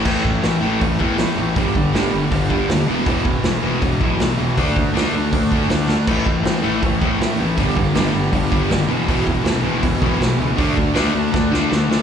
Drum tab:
CC |x-------|--------|--------|--------|
HH |--o-o-o-|o-o-o-o-|o-o-o-o-|o-o-o-o-|
SD |--o---o-|--o---o-|--o---o-|--o---oo|
BD |oo--oo--|oo--oo--|oo--oo--|oo--oo--|

CC |x-------|--------|--------|--------|
HH |--o-o-o-|o-o-o-o-|o-o-o-o-|o-o-----|
SD |--o---o-|--o---o-|--o---o-|--o-oooo|
BD |oo--oo--|oo--oo--|oo--oo--|oo--o---|